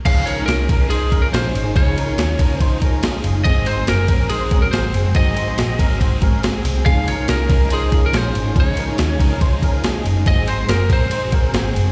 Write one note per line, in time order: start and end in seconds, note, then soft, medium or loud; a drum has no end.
0.05 0.42 C#2 loud
0.05 0.37 C#3 medium
0.05 0.38 F3 medium
0.05 10.22 G#3 medium
0.05 0.38 G#3 medium
0.05 3.43 C#4 medium
0.05 0.26 C#4 medium
0.05 3.42 D#4 medium
0.05 0.37 D#4 medium
0.05 3.42 F4 loud
0.05 0.27 G#4 medium
0.05 0.36 G#4 medium
0.05 0.25 F5 loud
0.05 kick loud
0.05 crash loud
0.05 ride medium
0.26 0.48 C#4 medium
0.26 0.48 A#4 medium
0.26 0.45 C#5 medium
0.26 ride medium
0.37 0.69 G#3 soft
0.37 0.69 D#4 medium
0.37 0.69 G#4 medium
0.46 0.66 C2 medium
0.46 0.69 C#4 medium
0.46 0.69 G#4 medium
0.46 0.86 A#4 loud
0.46 snare loud
0.46 ride medium
0.69 1.30 C2 medium
0.69 1.09 F3 medium
0.69 1.12 G#3 medium
0.69 0.91 C#4 medium
0.69 1.13 D#4 medium
0.69 1.13 G#4 medium
0.69 0.90 A#4 medium
0.69 kick loud
0.69 ride medium
0.90 1.12 D#4 medium
0.90 1.23 G#4 loud
0.90 1.11 C5 medium
0.90 ride medium
1.11 1.31 F3 medium
1.11 1.32 G#3 medium
1.11 1.33 C#4 soft
1.11 1.33 D#4 medium
1.11 1.34 G#4 medium
1.11 1.33 A#4 medium
1.11 kick medium
1.11 ride medium
1.22 1.27 A#4 medium
1.32 1.51 A#1 medium
1.32 1.65 F3 medium
1.32 1.65 G#3 medium
1.32 1.73 C#4 medium
1.32 1.64 D#4 medium
1.32 1.73 G#4 medium
1.32 1.62 G#4 medium
1.32 1.76 C5 medium
1.32 snare loud
1.32 ride medium
1.54 1.72 G#1 loud
1.54 ride medium
1.64 1.74 G#3 soft
1.64 1.75 D#4 medium
1.64 1.75 G#4 medium
1.75 2.12 C#2 loud
1.75 2.07 C#3 medium
1.75 2.07 F3 medium
1.75 2.07 G#3 medium
1.75 1.97 C#4 medium
1.75 2.07 D#4 medium
1.75 1.97 G#4 loud
1.75 2.06 G#4 medium
1.75 2.56 C#5 loud
1.75 kick loud
1.75 ride medium
1.97 2.19 C#4 medium
1.97 2.18 A#4 medium
1.97 ride medium
2.07 2.38 G#3 soft
2.07 2.39 D#4 medium
2.07 2.39 G#4 medium
2.17 2.36 D#2 loud
2.17 2.39 C#4 medium
2.17 2.40 G#4 medium
2.17 snare loud
2.17 ride medium
2.38 3.20 C#2 medium
2.38 2.80 F3 medium
2.38 2.81 G#3 medium
2.38 2.61 C#4 medium
2.38 2.82 D#4 medium
2.38 2.83 G#4 medium
2.38 2.61 A#4 medium
2.38 kick loud
2.38 ride medium
2.56 2.99 C5 loud
2.60 2.82 D#4 medium
2.60 2.81 C5 medium
2.60 kick medium
2.60 ride medium
2.81 3.00 F3 medium
2.81 3.01 G#3 medium
2.81 3.03 C#4 medium
2.81 3.02 D#4 medium
2.81 3.03 G#4 medium
2.81 3.03 A#4 medium
2.81 kick medium
2.81 ride medium
3.01 3.34 F3 medium
3.01 3.34 G#3 medium
3.01 3.43 C#4 medium
3.01 3.34 D#4 medium
3.01 3.43 G#4 medium
3.01 snare loud
3.01 ride medium
3.24 3.42 F#1 loud
3.24 ride medium
3.33 3.45 G#3 soft
3.33 3.45 D#4 medium
3.33 3.45 G#4 medium
3.44 3.81 G#1 loud
3.44 3.77 G#2 medium
3.44 3.77 D#3 medium
3.44 3.77 F#3 medium
3.44 3.78 G#3 medium
3.44 6.82 C4 medium
3.44 3.77 C4 loud
3.44 3.67 C4 medium
3.44 6.82 F#4 medium
3.44 3.67 G#4 loud
3.44 3.76 G#4 medium
3.44 3.67 D#5 loud
3.44 kick loud
3.44 ride medium
3.66 3.88 D#4 medium
3.66 3.88 C5 medium
3.66 3.88 C5 loud
3.66 ride medium
3.77 4.08 F#3 soft
3.77 4.09 G#3 medium
3.77 4.09 C4 medium
3.77 4.09 G#4 medium
3.87 4.06 F#1 loud
3.87 4.10 C4 medium
3.87 4.09 G#4 medium
3.87 4.32 A#4 loud
3.87 snare loud
3.87 ride medium
4.08 4.69 A#1 loud
4.08 4.50 F#3 medium
4.08 4.52 G#3 medium
4.08 4.52 C4 medium
4.08 4.31 C#4 medium
4.08 4.53 G#4 medium
4.08 4.31 A#4 medium
4.08 kick loud
4.08 ride medium
4.29 4.52 D#4 medium
4.29 4.63 G#4 loud
4.29 4.52 C5 medium
4.29 ride medium
4.51 4.71 F#3 medium
4.51 4.71 G#3 medium
4.51 4.73 C4 medium
4.51 4.74 C#4 medium
4.51 4.73 G#4 medium
4.51 4.73 A#4 medium
4.51 kick loud
4.51 ride medium
4.62 4.67 A#4 medium
4.71 4.91 G#1 loud
4.71 5.04 F#3 medium
4.71 5.05 G#3 medium
4.71 5.04 C4 medium
4.71 5.14 C4 medium
4.71 5.13 G#4 medium
4.71 5.03 G#4 medium
4.71 5.16 C5 loud
4.71 snare loud
4.71 ride medium
4.94 5.15 F#1 loud
4.94 ride medium
5.04 5.13 F#3 medium
5.04 5.14 G#3 medium
5.04 5.15 C4 medium
5.04 5.15 G#4 medium
5.14 5.51 G#1 loud
5.14 5.47 G#2 medium
5.14 5.47 D#3 medium
5.14 5.47 F#3 medium
5.14 5.47 G#3 medium
5.14 5.47 C4 loud
5.14 5.37 C4 medium
5.14 5.46 G#4 medium
5.14 5.37 G#4 loud
5.14 6.39 D#5 loud
5.14 kick loud
5.14 ride medium
5.37 5.58 D#4 medium
5.37 5.58 C5 medium
5.37 ride medium
5.47 5.78 F#3 soft
5.47 5.78 G#3 medium
5.47 5.79 C4 medium
5.47 5.79 G#4 medium
5.58 5.76 A#1 medium
5.58 5.80 C4 medium
5.58 5.79 G#4 medium
5.58 snare loud
5.58 ride medium
5.79 6.60 G#1 medium
5.79 6.20 F#3 medium
5.79 6.21 G#3 medium
5.79 6.22 C4 medium
5.79 6.01 C#4 medium
5.79 6.23 G#4 medium
5.79 6.00 A#4 medium
5.79 kick loud
5.79 ride medium
6.01 6.22 D#4 medium
6.01 6.22 C5 medium
6.01 kick medium
6.01 ride medium
6.21 6.42 F#3 medium
6.21 6.43 G#3 medium
6.21 6.43 C4 medium
6.21 6.43 C#4 medium
6.21 6.44 G#4 medium
6.21 6.43 A#4 medium
6.21 kick loud
6.21 ride medium
6.43 6.75 F#3 medium
6.43 6.75 G#3 medium
6.43 6.83 C4 medium
6.43 6.74 C4 medium
6.43 6.83 G#4 medium
6.43 6.73 G#4 medium
6.43 snare loud
6.43 ride medium
6.65 6.83 C2 loud
6.65 open hi-hat medium
6.65 ride medium
6.75 6.85 F#3 soft
6.75 6.84 G#3 soft
6.75 6.86 C4 medium
6.75 6.85 G#4 medium
6.84 7.22 C#2 loud
6.84 7.17 C#3 medium
6.84 7.17 F3 medium
6.84 7.17 G#3 medium
6.84 10.23 C#4 medium
6.84 7.07 C#4 medium
6.84 10.22 D#4 medium
6.84 7.17 D#4 medium
6.84 10.23 F4 medium
6.84 7.07 G#4 loud
6.84 7.16 G#4 medium
6.84 7.07 F5 loud
6.84 kick loud
6.84 ride medium
7.07 7.29 C#4 medium
7.07 7.28 A#4 medium
7.07 7.29 C#5 medium
7.07 ride medium
7.17 7.48 G#3 soft
7.17 7.49 D#4 medium
7.17 7.49 G#4 medium
7.28 7.46 C2 medium
7.28 7.50 C#4 medium
7.28 7.50 G#4 medium
7.28 7.73 A#4 loud
7.28 snare loud
7.28 ride medium
7.48 8.10 C2 medium
7.48 7.90 F3 medium
7.48 7.92 G#3 medium
7.48 7.71 C#4 medium
7.48 7.92 D#4 medium
7.48 7.93 G#4 medium
7.48 7.71 A#4 medium
7.48 kick loud
7.48 ride medium
7.70 7.93 D#4 medium
7.70 8.05 G#4 loud
7.70 7.92 C5 medium
7.70 ride medium
7.91 8.11 F3 medium
7.91 8.12 G#3 medium
7.91 8.14 C#4 medium
7.91 8.13 D#4 medium
7.91 8.13 G#4 medium
7.91 8.14 A#4 medium
7.91 kick medium
7.91 ride medium
8.06 8.17 A#4 medium
8.13 8.31 A#1 medium
8.13 8.45 F3 medium
8.13 8.45 G#3 medium
8.13 8.54 C#4 medium
8.13 8.44 D#4 medium
8.13 8.43 G#4 medium
8.13 8.54 G#4 medium
8.13 8.59 C5 loud
8.13 snare loud
8.13 ride medium
8.35 8.53 G#1 medium
8.35 ride medium
8.44 8.54 G#3 soft
8.44 8.55 D#4 medium
8.44 8.55 G#4 medium
8.54 8.92 C#2 loud
8.54 8.87 C#3 medium
8.54 8.87 F3 medium
8.54 8.87 G#3 medium
8.54 8.77 C#4 medium
8.54 8.87 D#4 medium
8.54 8.86 G#4 medium
8.54 8.77 G#4 loud
8.54 kick loud
8.54 ride medium
8.60 9.82 C#5 loud
8.77 8.99 C#4 medium
8.77 8.99 A#4 medium
8.77 ride medium
8.88 9.19 G#3 medium
8.88 9.20 D#4 medium
8.88 9.19 G#4 medium
8.98 9.16 D#2 loud
8.98 9.20 C#4 medium
8.98 9.20 G#4 medium
8.98 snare loud
8.98 ride medium
9.20 10.01 C#2 loud
9.20 9.62 F3 medium
9.20 9.63 G#3 medium
9.20 9.42 C#4 medium
9.20 9.64 D#4 medium
9.20 9.65 G#4 medium
9.20 9.41 A#4 medium
9.20 kick loud
9.20 ride medium
9.41 9.63 D#4 medium
9.41 9.62 C5 medium
9.41 kick loud
9.41 ride medium
9.62 9.83 F3 medium
9.62 9.84 G#3 medium
9.62 9.84 C#4 medium
9.62 9.85 D#4 medium
9.62 9.85 G#4 medium
9.62 9.84 A#4 medium
9.62 kick medium
9.62 ride medium
9.84 10.16 F3 medium
9.84 10.16 G#3 medium
9.84 10.24 C#4 medium
9.84 10.16 D#4 medium
9.84 10.24 G#4 loud
9.84 10.15 G#4 medium
9.84 snare loud
9.84 ride medium
10.05 10.23 F#1 medium
10.05 ride medium
10.16 10.27 G#3 medium
10.16 10.27 D#4 soft
10.16 10.26 G#4 medium
10.26 10.62 G#1 loud
10.26 10.58 G#2 medium
10.26 10.59 D#3 medium
10.26 10.59 F#3 medium
10.26 11.92 G#3 medium
10.26 10.59 G#3 medium
10.26 11.92 C4 medium
10.26 10.48 C4 medium
10.26 10.59 C4 medium
10.26 11.92 F#4 medium
10.26 10.47 G#4 loud
10.26 10.58 G#4 medium
10.26 10.49 D#5 loud
10.26 kick loud
10.26 ride medium
10.48 10.69 D#4 medium
10.48 10.69 C5 medium
10.48 10.69 C5 loud
10.48 ride medium
10.59 10.88 F#3 soft
10.59 10.89 G#3 medium
10.59 10.90 C4 medium
10.59 10.90 G#4 medium
10.69 10.87 F#1 loud
10.69 10.91 C4 medium
10.69 10.90 G#4 medium
10.69 10.91 A#4 loud
10.69 snare loud
10.69 ride medium
10.89 11.51 A#1 medium
10.89 11.31 F#3 medium
10.89 11.32 G#3 medium
10.89 11.32 C4 medium
10.89 11.12 C#4 medium
10.89 11.34 G#4 medium
10.89 11.11 A#4 medium
10.89 11.92 C5 loud
10.89 kick loud
10.89 ride medium
11.11 11.33 D#4 medium
11.11 11.33 C5 medium
11.11 ride medium
11.32 11.52 F#3 medium
11.32 11.53 G#3 medium
11.32 11.54 C4 medium
11.32 11.55 C#4 medium
11.32 11.54 G#4 medium
11.32 11.55 A#4 medium
11.32 kick medium
11.32 ride medium
11.53 11.72 G#1 loud
11.53 11.86 F#3 medium
11.53 11.85 G#3 medium
11.53 11.85 C4 medium
11.53 11.92 C4 medium
11.53 11.92 G#4 medium
11.53 11.84 G#4 medium
11.53 snare loud
11.53 ride medium
11.75 11.92 F#1 loud
11.75 ride medium
11.85 11.92 F#3 medium
11.85 11.92 G#3 medium
11.85 11.92 C4 medium
11.85 11.92 G#4 medium